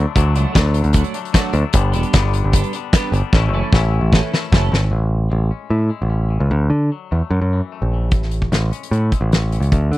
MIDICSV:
0, 0, Header, 1, 6, 480
1, 0, Start_track
1, 0, Key_signature, 3, "major"
1, 0, Tempo, 396301
1, 190, Time_signature, 4, 2, 24, 8
1, 5470, Tempo, 400267
1, 12021, End_track
2, 0, Start_track
2, 0, Title_t, "Clean electric guitar"
2, 0, Program_c, 0, 27
2, 431, Note_on_c, 0, 66, 94
2, 443, Note_on_c, 0, 62, 91
2, 445, Note_on_c, 0, 57, 84
2, 455, Note_on_c, 0, 54, 82
2, 669, Note_off_c, 0, 66, 0
2, 670, Note_off_c, 0, 62, 0
2, 672, Note_off_c, 0, 54, 0
2, 673, Note_off_c, 0, 57, 0
2, 1159, Note_on_c, 0, 54, 82
2, 1163, Note_on_c, 0, 62, 84
2, 1167, Note_on_c, 0, 57, 92
2, 1172, Note_on_c, 0, 66, 90
2, 1376, Note_off_c, 0, 57, 0
2, 1376, Note_off_c, 0, 66, 0
2, 1377, Note_off_c, 0, 54, 0
2, 1383, Note_off_c, 0, 62, 0
2, 1623, Note_on_c, 0, 54, 90
2, 1630, Note_on_c, 0, 57, 91
2, 1635, Note_on_c, 0, 62, 100
2, 1639, Note_on_c, 0, 66, 102
2, 1837, Note_off_c, 0, 62, 0
2, 1842, Note_off_c, 0, 66, 0
2, 1849, Note_off_c, 0, 54, 0
2, 1854, Note_off_c, 0, 57, 0
2, 2328, Note_on_c, 0, 67, 104
2, 2335, Note_on_c, 0, 62, 93
2, 2338, Note_on_c, 0, 59, 80
2, 2350, Note_on_c, 0, 55, 79
2, 2572, Note_off_c, 0, 55, 0
2, 2576, Note_off_c, 0, 67, 0
2, 2580, Note_off_c, 0, 62, 0
2, 2581, Note_off_c, 0, 59, 0
2, 3054, Note_on_c, 0, 55, 85
2, 3063, Note_on_c, 0, 59, 91
2, 3076, Note_on_c, 0, 62, 96
2, 3079, Note_on_c, 0, 67, 84
2, 3298, Note_off_c, 0, 67, 0
2, 3299, Note_off_c, 0, 55, 0
2, 3304, Note_off_c, 0, 59, 0
2, 3304, Note_off_c, 0, 62, 0
2, 3560, Note_on_c, 0, 55, 82
2, 3561, Note_on_c, 0, 62, 100
2, 3569, Note_on_c, 0, 59, 89
2, 3571, Note_on_c, 0, 67, 98
2, 3792, Note_off_c, 0, 55, 0
2, 3792, Note_off_c, 0, 59, 0
2, 3793, Note_off_c, 0, 62, 0
2, 3797, Note_off_c, 0, 67, 0
2, 4280, Note_on_c, 0, 61, 89
2, 4284, Note_on_c, 0, 69, 104
2, 4287, Note_on_c, 0, 52, 89
2, 4290, Note_on_c, 0, 57, 89
2, 4513, Note_off_c, 0, 61, 0
2, 4515, Note_off_c, 0, 69, 0
2, 4516, Note_off_c, 0, 52, 0
2, 4517, Note_off_c, 0, 57, 0
2, 4987, Note_on_c, 0, 52, 83
2, 4997, Note_on_c, 0, 57, 83
2, 4997, Note_on_c, 0, 61, 84
2, 5009, Note_on_c, 0, 69, 85
2, 5216, Note_off_c, 0, 69, 0
2, 5222, Note_off_c, 0, 61, 0
2, 5226, Note_off_c, 0, 57, 0
2, 5228, Note_off_c, 0, 52, 0
2, 5475, Note_on_c, 0, 57, 91
2, 5479, Note_on_c, 0, 52, 80
2, 5485, Note_on_c, 0, 61, 97
2, 5492, Note_on_c, 0, 69, 96
2, 5706, Note_off_c, 0, 69, 0
2, 5709, Note_off_c, 0, 61, 0
2, 5710, Note_off_c, 0, 52, 0
2, 5711, Note_off_c, 0, 57, 0
2, 12021, End_track
3, 0, Start_track
3, 0, Title_t, "Clean electric guitar"
3, 0, Program_c, 1, 27
3, 0, Note_on_c, 1, 50, 74
3, 0, Note_on_c, 1, 54, 61
3, 0, Note_on_c, 1, 57, 63
3, 0, Note_on_c, 1, 62, 68
3, 170, Note_off_c, 1, 50, 0
3, 181, Note_off_c, 1, 57, 0
3, 184, Note_off_c, 1, 54, 0
3, 185, Note_on_c, 1, 50, 89
3, 195, Note_on_c, 1, 57, 102
3, 197, Note_off_c, 1, 62, 0
3, 199, Note_on_c, 1, 54, 93
3, 202, Note_on_c, 1, 62, 105
3, 427, Note_off_c, 1, 62, 0
3, 430, Note_off_c, 1, 57, 0
3, 432, Note_on_c, 1, 62, 73
3, 434, Note_off_c, 1, 54, 0
3, 444, Note_on_c, 1, 57, 70
3, 449, Note_on_c, 1, 54, 56
3, 624, Note_off_c, 1, 50, 0
3, 637, Note_off_c, 1, 54, 0
3, 638, Note_on_c, 1, 50, 87
3, 644, Note_off_c, 1, 57, 0
3, 652, Note_on_c, 1, 54, 96
3, 659, Note_on_c, 1, 57, 96
3, 665, Note_off_c, 1, 62, 0
3, 670, Note_on_c, 1, 62, 106
3, 1369, Note_off_c, 1, 62, 0
3, 1375, Note_off_c, 1, 57, 0
3, 1383, Note_on_c, 1, 62, 73
3, 1386, Note_off_c, 1, 54, 0
3, 1390, Note_on_c, 1, 57, 73
3, 1400, Note_on_c, 1, 54, 72
3, 1592, Note_off_c, 1, 50, 0
3, 1596, Note_off_c, 1, 54, 0
3, 1603, Note_off_c, 1, 57, 0
3, 1607, Note_on_c, 1, 50, 78
3, 1611, Note_on_c, 1, 54, 74
3, 1613, Note_off_c, 1, 62, 0
3, 1617, Note_on_c, 1, 57, 90
3, 1627, Note_on_c, 1, 62, 90
3, 1834, Note_off_c, 1, 62, 0
3, 1846, Note_off_c, 1, 57, 0
3, 1849, Note_on_c, 1, 62, 79
3, 1852, Note_off_c, 1, 54, 0
3, 1861, Note_on_c, 1, 57, 74
3, 1867, Note_on_c, 1, 54, 58
3, 2081, Note_off_c, 1, 50, 0
3, 2083, Note_off_c, 1, 62, 0
3, 2089, Note_off_c, 1, 57, 0
3, 2092, Note_off_c, 1, 54, 0
3, 2095, Note_on_c, 1, 43, 93
3, 2104, Note_on_c, 1, 50, 110
3, 2108, Note_on_c, 1, 55, 100
3, 2108, Note_on_c, 1, 59, 114
3, 2122, Note_on_c, 1, 62, 116
3, 2343, Note_off_c, 1, 62, 0
3, 2351, Note_off_c, 1, 59, 0
3, 2357, Note_off_c, 1, 55, 0
3, 2358, Note_on_c, 1, 62, 73
3, 2365, Note_on_c, 1, 59, 66
3, 2372, Note_on_c, 1, 55, 60
3, 2580, Note_off_c, 1, 43, 0
3, 2584, Note_off_c, 1, 50, 0
3, 2590, Note_off_c, 1, 55, 0
3, 2593, Note_on_c, 1, 43, 93
3, 2599, Note_off_c, 1, 62, 0
3, 2600, Note_off_c, 1, 59, 0
3, 2600, Note_on_c, 1, 50, 95
3, 2604, Note_on_c, 1, 55, 104
3, 2614, Note_on_c, 1, 62, 103
3, 2615, Note_on_c, 1, 59, 109
3, 3314, Note_off_c, 1, 62, 0
3, 3322, Note_off_c, 1, 59, 0
3, 3328, Note_on_c, 1, 62, 86
3, 3336, Note_off_c, 1, 55, 0
3, 3337, Note_on_c, 1, 59, 66
3, 3350, Note_on_c, 1, 55, 60
3, 3548, Note_off_c, 1, 43, 0
3, 3551, Note_off_c, 1, 50, 0
3, 3570, Note_off_c, 1, 55, 0
3, 3574, Note_off_c, 1, 59, 0
3, 3576, Note_on_c, 1, 50, 77
3, 3585, Note_off_c, 1, 62, 0
3, 3585, Note_on_c, 1, 55, 81
3, 3588, Note_on_c, 1, 59, 93
3, 3600, Note_on_c, 1, 62, 90
3, 3793, Note_off_c, 1, 62, 0
3, 3804, Note_off_c, 1, 59, 0
3, 3807, Note_on_c, 1, 62, 72
3, 3815, Note_off_c, 1, 55, 0
3, 3819, Note_on_c, 1, 59, 63
3, 3830, Note_on_c, 1, 55, 63
3, 4021, Note_off_c, 1, 62, 0
3, 4026, Note_off_c, 1, 50, 0
3, 4027, Note_off_c, 1, 59, 0
3, 4033, Note_off_c, 1, 55, 0
3, 4046, Note_on_c, 1, 45, 96
3, 4047, Note_on_c, 1, 52, 92
3, 4057, Note_on_c, 1, 57, 95
3, 4060, Note_on_c, 1, 64, 102
3, 4061, Note_on_c, 1, 61, 99
3, 4263, Note_off_c, 1, 64, 0
3, 4277, Note_on_c, 1, 64, 73
3, 4283, Note_off_c, 1, 61, 0
3, 4291, Note_off_c, 1, 57, 0
3, 4298, Note_on_c, 1, 61, 71
3, 4305, Note_on_c, 1, 57, 59
3, 4503, Note_off_c, 1, 45, 0
3, 4511, Note_off_c, 1, 52, 0
3, 4516, Note_off_c, 1, 57, 0
3, 4518, Note_on_c, 1, 45, 98
3, 4525, Note_on_c, 1, 52, 99
3, 4526, Note_off_c, 1, 61, 0
3, 4527, Note_off_c, 1, 64, 0
3, 4530, Note_on_c, 1, 57, 95
3, 4541, Note_on_c, 1, 61, 106
3, 4541, Note_on_c, 1, 64, 108
3, 5235, Note_off_c, 1, 64, 0
3, 5249, Note_on_c, 1, 64, 74
3, 5253, Note_off_c, 1, 61, 0
3, 5264, Note_off_c, 1, 57, 0
3, 5267, Note_on_c, 1, 61, 67
3, 5278, Note_on_c, 1, 57, 69
3, 5474, Note_off_c, 1, 52, 0
3, 5475, Note_off_c, 1, 45, 0
3, 5483, Note_off_c, 1, 57, 0
3, 5485, Note_off_c, 1, 61, 0
3, 5485, Note_off_c, 1, 64, 0
3, 5489, Note_on_c, 1, 52, 74
3, 5497, Note_on_c, 1, 57, 88
3, 5499, Note_on_c, 1, 61, 82
3, 5500, Note_on_c, 1, 64, 86
3, 5698, Note_off_c, 1, 64, 0
3, 5712, Note_on_c, 1, 64, 68
3, 5722, Note_off_c, 1, 61, 0
3, 5723, Note_off_c, 1, 57, 0
3, 5736, Note_on_c, 1, 61, 67
3, 5737, Note_on_c, 1, 57, 57
3, 5934, Note_off_c, 1, 64, 0
3, 5942, Note_off_c, 1, 52, 0
3, 5943, Note_on_c, 1, 45, 63
3, 5947, Note_off_c, 1, 57, 0
3, 5947, Note_off_c, 1, 61, 0
3, 6410, Note_on_c, 1, 56, 62
3, 6661, Note_on_c, 1, 61, 53
3, 6896, Note_on_c, 1, 64, 64
3, 7112, Note_off_c, 1, 56, 0
3, 7127, Note_on_c, 1, 56, 59
3, 7144, Note_off_c, 1, 45, 0
3, 7359, Note_off_c, 1, 61, 0
3, 7364, Note_on_c, 1, 61, 63
3, 7613, Note_on_c, 1, 52, 56
3, 7857, Note_off_c, 1, 56, 0
3, 7860, Note_off_c, 1, 52, 0
3, 7862, Note_off_c, 1, 64, 0
3, 7865, Note_on_c, 1, 50, 59
3, 7901, Note_off_c, 1, 61, 0
3, 8352, Note_on_c, 1, 54, 58
3, 8584, Note_on_c, 1, 57, 59
3, 8828, Note_off_c, 1, 50, 0
3, 8831, Note_off_c, 1, 54, 0
3, 9081, Note_on_c, 1, 52, 61
3, 9310, Note_off_c, 1, 57, 0
3, 9315, Note_on_c, 1, 57, 61
3, 9568, Note_on_c, 1, 49, 61
3, 9796, Note_off_c, 1, 52, 0
3, 9799, Note_off_c, 1, 49, 0
3, 9807, Note_on_c, 1, 45, 61
3, 10271, Note_on_c, 1, 56, 59
3, 10307, Note_off_c, 1, 57, 0
3, 10512, Note_on_c, 1, 61, 61
3, 10766, Note_on_c, 1, 64, 72
3, 10985, Note_off_c, 1, 56, 0
3, 10999, Note_off_c, 1, 45, 0
3, 10999, Note_on_c, 1, 56, 59
3, 11235, Note_off_c, 1, 61, 0
3, 11250, Note_on_c, 1, 61, 62
3, 11484, Note_on_c, 1, 52, 60
3, 11714, Note_off_c, 1, 52, 0
3, 11714, Note_off_c, 1, 56, 0
3, 11718, Note_off_c, 1, 64, 0
3, 11719, Note_on_c, 1, 50, 61
3, 11720, Note_off_c, 1, 61, 0
3, 12021, Note_off_c, 1, 50, 0
3, 12021, End_track
4, 0, Start_track
4, 0, Title_t, "Picked electric bass"
4, 0, Program_c, 2, 34
4, 192, Note_on_c, 2, 38, 100
4, 427, Note_off_c, 2, 38, 0
4, 427, Note_on_c, 2, 37, 88
4, 538, Note_off_c, 2, 37, 0
4, 671, Note_on_c, 2, 38, 96
4, 1000, Note_off_c, 2, 38, 0
4, 1015, Note_on_c, 2, 38, 82
4, 1241, Note_off_c, 2, 38, 0
4, 1859, Note_on_c, 2, 38, 95
4, 1973, Note_off_c, 2, 38, 0
4, 2107, Note_on_c, 2, 31, 112
4, 2355, Note_off_c, 2, 31, 0
4, 2355, Note_on_c, 2, 28, 90
4, 2461, Note_off_c, 2, 28, 0
4, 2591, Note_on_c, 2, 31, 101
4, 2918, Note_off_c, 2, 31, 0
4, 2958, Note_on_c, 2, 31, 84
4, 3172, Note_off_c, 2, 31, 0
4, 3779, Note_on_c, 2, 31, 88
4, 3892, Note_off_c, 2, 31, 0
4, 4036, Note_on_c, 2, 33, 109
4, 4259, Note_off_c, 2, 33, 0
4, 4259, Note_on_c, 2, 30, 86
4, 4372, Note_off_c, 2, 30, 0
4, 4512, Note_on_c, 2, 33, 98
4, 4840, Note_off_c, 2, 33, 0
4, 4858, Note_on_c, 2, 33, 78
4, 5083, Note_off_c, 2, 33, 0
4, 5475, Note_on_c, 2, 30, 96
4, 5687, Note_off_c, 2, 30, 0
4, 5712, Note_on_c, 2, 32, 92
4, 5925, Note_off_c, 2, 32, 0
4, 5947, Note_on_c, 2, 33, 85
4, 6387, Note_off_c, 2, 33, 0
4, 6427, Note_on_c, 2, 33, 79
4, 6647, Note_off_c, 2, 33, 0
4, 6894, Note_on_c, 2, 45, 81
4, 7120, Note_off_c, 2, 45, 0
4, 7269, Note_on_c, 2, 33, 67
4, 7709, Note_off_c, 2, 33, 0
4, 7733, Note_on_c, 2, 37, 72
4, 7849, Note_off_c, 2, 37, 0
4, 7859, Note_on_c, 2, 38, 98
4, 8081, Note_off_c, 2, 38, 0
4, 8088, Note_on_c, 2, 50, 74
4, 8318, Note_off_c, 2, 50, 0
4, 8592, Note_on_c, 2, 40, 74
4, 8701, Note_off_c, 2, 40, 0
4, 8815, Note_on_c, 2, 42, 89
4, 8932, Note_off_c, 2, 42, 0
4, 8947, Note_on_c, 2, 42, 74
4, 9169, Note_off_c, 2, 42, 0
4, 9430, Note_on_c, 2, 34, 64
4, 9782, Note_off_c, 2, 34, 0
4, 9782, Note_on_c, 2, 33, 86
4, 10227, Note_off_c, 2, 33, 0
4, 10271, Note_on_c, 2, 33, 81
4, 10491, Note_off_c, 2, 33, 0
4, 10744, Note_on_c, 2, 45, 86
4, 10967, Note_off_c, 2, 45, 0
4, 11096, Note_on_c, 2, 33, 79
4, 11543, Note_off_c, 2, 33, 0
4, 11572, Note_on_c, 2, 37, 78
4, 11690, Note_off_c, 2, 37, 0
4, 11709, Note_on_c, 2, 38, 104
4, 11930, Note_off_c, 2, 38, 0
4, 11945, Note_on_c, 2, 50, 75
4, 12021, Note_off_c, 2, 50, 0
4, 12021, End_track
5, 0, Start_track
5, 0, Title_t, "Muted clean electric guitar strokes"
5, 219, Note_on_c, 9, 29, 56
5, 340, Note_off_c, 9, 29, 0
5, 685, Note_on_c, 9, 29, 58
5, 806, Note_off_c, 9, 29, 0
5, 914, Note_on_c, 9, 29, 59
5, 1035, Note_off_c, 9, 29, 0
5, 1390, Note_on_c, 9, 29, 46
5, 1511, Note_off_c, 9, 29, 0
5, 1852, Note_on_c, 9, 29, 49
5, 1973, Note_off_c, 9, 29, 0
5, 2096, Note_on_c, 9, 29, 48
5, 2217, Note_off_c, 9, 29, 0
5, 2586, Note_on_c, 9, 29, 54
5, 2707, Note_off_c, 9, 29, 0
5, 2817, Note_on_c, 9, 29, 54
5, 2938, Note_off_c, 9, 29, 0
5, 3312, Note_on_c, 9, 29, 51
5, 3433, Note_off_c, 9, 29, 0
5, 3806, Note_on_c, 9, 29, 47
5, 3927, Note_off_c, 9, 29, 0
5, 4531, Note_on_c, 9, 29, 54
5, 4652, Note_off_c, 9, 29, 0
5, 4778, Note_on_c, 9, 29, 52
5, 4899, Note_off_c, 9, 29, 0
5, 5230, Note_on_c, 9, 29, 52
5, 5351, Note_off_c, 9, 29, 0
5, 5720, Note_on_c, 9, 29, 53
5, 5840, Note_off_c, 9, 29, 0
5, 12021, End_track
6, 0, Start_track
6, 0, Title_t, "Drums"
6, 190, Note_on_c, 9, 36, 117
6, 198, Note_on_c, 9, 42, 95
6, 311, Note_off_c, 9, 36, 0
6, 319, Note_off_c, 9, 42, 0
6, 430, Note_on_c, 9, 42, 67
6, 551, Note_off_c, 9, 42, 0
6, 669, Note_on_c, 9, 36, 113
6, 669, Note_on_c, 9, 42, 90
6, 678, Note_on_c, 9, 38, 122
6, 790, Note_off_c, 9, 36, 0
6, 791, Note_off_c, 9, 42, 0
6, 799, Note_off_c, 9, 38, 0
6, 899, Note_on_c, 9, 42, 75
6, 1016, Note_off_c, 9, 42, 0
6, 1016, Note_on_c, 9, 42, 45
6, 1127, Note_off_c, 9, 42, 0
6, 1127, Note_on_c, 9, 42, 99
6, 1142, Note_on_c, 9, 36, 104
6, 1248, Note_off_c, 9, 42, 0
6, 1262, Note_on_c, 9, 42, 47
6, 1263, Note_off_c, 9, 36, 0
6, 1382, Note_off_c, 9, 42, 0
6, 1382, Note_on_c, 9, 42, 69
6, 1503, Note_off_c, 9, 42, 0
6, 1517, Note_on_c, 9, 42, 45
6, 1624, Note_off_c, 9, 42, 0
6, 1624, Note_on_c, 9, 42, 101
6, 1625, Note_on_c, 9, 36, 110
6, 1632, Note_on_c, 9, 38, 105
6, 1745, Note_off_c, 9, 42, 0
6, 1746, Note_off_c, 9, 36, 0
6, 1753, Note_off_c, 9, 38, 0
6, 1854, Note_on_c, 9, 42, 72
6, 1975, Note_off_c, 9, 42, 0
6, 2093, Note_on_c, 9, 42, 107
6, 2105, Note_on_c, 9, 36, 114
6, 2214, Note_off_c, 9, 42, 0
6, 2226, Note_off_c, 9, 36, 0
6, 2343, Note_on_c, 9, 42, 77
6, 2460, Note_off_c, 9, 42, 0
6, 2460, Note_on_c, 9, 42, 54
6, 2581, Note_off_c, 9, 42, 0
6, 2583, Note_on_c, 9, 42, 110
6, 2589, Note_on_c, 9, 36, 120
6, 2591, Note_on_c, 9, 38, 115
6, 2704, Note_off_c, 9, 42, 0
6, 2710, Note_off_c, 9, 36, 0
6, 2713, Note_off_c, 9, 38, 0
6, 2827, Note_on_c, 9, 42, 79
6, 2948, Note_off_c, 9, 42, 0
6, 3067, Note_on_c, 9, 42, 104
6, 3069, Note_on_c, 9, 36, 116
6, 3188, Note_off_c, 9, 42, 0
6, 3191, Note_off_c, 9, 36, 0
6, 3194, Note_on_c, 9, 42, 51
6, 3307, Note_off_c, 9, 42, 0
6, 3307, Note_on_c, 9, 42, 78
6, 3428, Note_off_c, 9, 42, 0
6, 3547, Note_on_c, 9, 42, 105
6, 3549, Note_on_c, 9, 36, 118
6, 3556, Note_on_c, 9, 38, 117
6, 3668, Note_off_c, 9, 42, 0
6, 3670, Note_off_c, 9, 36, 0
6, 3677, Note_off_c, 9, 38, 0
6, 3795, Note_on_c, 9, 42, 75
6, 3916, Note_off_c, 9, 42, 0
6, 4031, Note_on_c, 9, 36, 115
6, 4036, Note_on_c, 9, 38, 64
6, 4152, Note_off_c, 9, 36, 0
6, 4157, Note_off_c, 9, 38, 0
6, 4512, Note_on_c, 9, 36, 116
6, 4526, Note_on_c, 9, 38, 81
6, 4633, Note_off_c, 9, 36, 0
6, 4647, Note_off_c, 9, 38, 0
6, 4997, Note_on_c, 9, 36, 100
6, 5008, Note_on_c, 9, 38, 93
6, 5118, Note_off_c, 9, 36, 0
6, 5129, Note_off_c, 9, 38, 0
6, 5251, Note_on_c, 9, 38, 81
6, 5373, Note_off_c, 9, 38, 0
6, 5481, Note_on_c, 9, 36, 108
6, 5494, Note_on_c, 9, 38, 98
6, 5601, Note_off_c, 9, 36, 0
6, 5614, Note_off_c, 9, 38, 0
6, 5735, Note_on_c, 9, 38, 82
6, 5854, Note_off_c, 9, 38, 0
6, 9785, Note_on_c, 9, 42, 53
6, 9790, Note_on_c, 9, 36, 100
6, 9905, Note_off_c, 9, 42, 0
6, 9910, Note_off_c, 9, 36, 0
6, 9917, Note_on_c, 9, 38, 25
6, 10023, Note_on_c, 9, 42, 54
6, 10037, Note_off_c, 9, 38, 0
6, 10143, Note_off_c, 9, 42, 0
6, 10150, Note_on_c, 9, 36, 74
6, 10270, Note_off_c, 9, 36, 0
6, 10275, Note_on_c, 9, 42, 55
6, 10284, Note_on_c, 9, 38, 94
6, 10395, Note_off_c, 9, 42, 0
6, 10404, Note_off_c, 9, 38, 0
6, 10520, Note_on_c, 9, 42, 56
6, 10640, Note_off_c, 9, 42, 0
6, 10647, Note_on_c, 9, 42, 59
6, 10761, Note_off_c, 9, 42, 0
6, 10761, Note_on_c, 9, 42, 56
6, 10881, Note_off_c, 9, 42, 0
6, 10991, Note_on_c, 9, 36, 72
6, 10991, Note_on_c, 9, 42, 55
6, 11111, Note_off_c, 9, 36, 0
6, 11111, Note_off_c, 9, 42, 0
6, 11235, Note_on_c, 9, 42, 60
6, 11244, Note_on_c, 9, 38, 98
6, 11355, Note_off_c, 9, 42, 0
6, 11364, Note_off_c, 9, 38, 0
6, 11474, Note_on_c, 9, 42, 53
6, 11594, Note_off_c, 9, 42, 0
6, 11596, Note_on_c, 9, 42, 56
6, 11711, Note_off_c, 9, 42, 0
6, 11711, Note_on_c, 9, 36, 104
6, 11711, Note_on_c, 9, 42, 58
6, 11831, Note_off_c, 9, 36, 0
6, 11831, Note_off_c, 9, 42, 0
6, 11962, Note_on_c, 9, 42, 57
6, 12021, Note_off_c, 9, 42, 0
6, 12021, End_track
0, 0, End_of_file